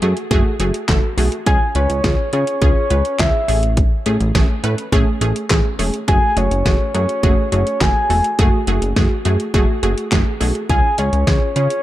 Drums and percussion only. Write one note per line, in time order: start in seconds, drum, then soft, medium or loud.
0.02 closed hi-hat medium
0.17 closed hi-hat medium
0.31 kick loud
0.31 closed hi-hat medium
0.60 closed hi-hat medium
0.74 closed hi-hat medium
0.89 kick loud
0.89 snare loud
0.89 clap loud
0.89 closed hi-hat medium
1.18 open hi-hat medium
1.32 closed hi-hat soft
1.46 kick loud
1.46 closed hi-hat medium
1.75 closed hi-hat medium
1.90 closed hi-hat medium
2.04 kick loud
2.04 snare loud
2.04 closed hi-hat medium
2.33 closed hi-hat medium
2.47 closed hi-hat medium
2.62 kick loud
2.62 closed hi-hat medium
2.90 closed hi-hat medium
3.05 closed hi-hat medium
3.19 kick loud
3.19 snare loud
3.19 clap loud
3.19 closed hi-hat medium
3.48 open hi-hat medium
3.63 closed hi-hat soft
3.77 kick loud
3.77 closed hi-hat medium
4.06 closed hi-hat medium
4.21 closed hi-hat medium
4.35 kick loud
4.35 snare loud
4.35 closed hi-hat medium
4.64 closed hi-hat medium
4.78 closed hi-hat medium
4.92 kick loud
4.92 closed hi-hat medium
5.21 closed hi-hat medium
5.36 closed hi-hat medium
5.50 kick loud
5.50 snare loud
5.50 clap loud
5.50 closed hi-hat medium
5.79 open hi-hat medium
5.94 closed hi-hat soft
6.08 kick loud
6.08 closed hi-hat medium
6.37 closed hi-hat medium
6.51 closed hi-hat medium
6.66 kick loud
6.66 snare loud
6.66 closed hi-hat medium
6.95 closed hi-hat medium
7.09 closed hi-hat medium
7.23 kick loud
7.23 closed hi-hat medium
7.52 closed hi-hat medium
7.67 closed hi-hat medium
7.81 kick loud
7.81 snare loud
7.81 clap loud
7.81 closed hi-hat medium
8.10 open hi-hat medium
8.24 closed hi-hat soft
8.39 kick loud
8.39 closed hi-hat medium
8.67 closed hi-hat medium
8.82 closed hi-hat medium
8.96 kick loud
8.96 snare loud
8.96 closed hi-hat medium
9.25 closed hi-hat medium
9.40 closed hi-hat medium
9.54 kick loud
9.54 closed hi-hat medium
9.83 closed hi-hat medium
9.98 closed hi-hat medium
10.12 kick loud
10.12 snare loud
10.12 clap loud
10.12 closed hi-hat medium
10.41 open hi-hat medium
10.55 closed hi-hat soft
10.70 kick loud
10.70 closed hi-hat medium
10.98 closed hi-hat medium
11.13 closed hi-hat medium
11.27 kick loud
11.27 snare loud
11.27 closed hi-hat medium
11.56 closed hi-hat medium
11.70 closed hi-hat medium